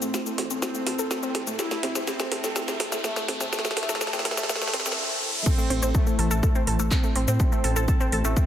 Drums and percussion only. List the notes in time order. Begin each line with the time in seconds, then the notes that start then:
0.02 shaker
0.14 snare, shaker
0.26 shaker
0.38 snare, open hi-hat
0.50 shaker
0.62 snare, shaker
0.75 shaker
0.87 snare, open hi-hat
0.99 shaker
1.11 snare, shaker
1.23 shaker
1.35 snare, open hi-hat
1.47 shaker
1.59 snare, shaker
1.71 snare, shaker
1.83 snare, open hi-hat
1.95 snare, shaker
2.07 snare, shaker
2.20 snare, shaker
2.32 snare, open hi-hat
2.44 snare, shaker
2.56 snare, shaker
2.68 snare, shaker
2.80 snare, open hi-hat
2.92 snare, shaker
3.04 snare, shaker
3.16 snare, shaker
3.28 snare, open hi-hat
3.41 snare, shaker
3.53 snare, shaker
3.59 snare
3.65 snare, shaker
3.71 snare
3.77 snare, open hi-hat
3.83 snare
3.89 snare, shaker
3.95 snare
4.01 snare, shaker
4.07 snare
4.13 snare, shaker
4.19 snare
4.25 snare, open hi-hat
4.31 snare
4.37 snare, shaker
4.43 snare
4.49 snare, shaker
4.55 snare
4.62 snare, shaker
4.67 snare
4.74 snare, open hi-hat
4.80 snare
4.86 snare, shaker
4.92 snare
5.46 kick, crash, shaker
5.58 shaker
5.70 open hi-hat
5.83 shaker
5.95 kick, shaker
6.07 shaker
6.19 open hi-hat
6.31 shaker
6.43 kick, shaker
6.55 shaker
6.67 open hi-hat
6.79 shaker
6.91 kick, clap, shaker
7.04 shaker
7.16 open hi-hat
7.28 shaker
7.40 kick, shaker
7.52 shaker
7.64 open hi-hat
7.76 shaker
7.88 kick, shaker
8.00 shaker
8.12 open hi-hat
8.25 shaker
8.37 kick, shaker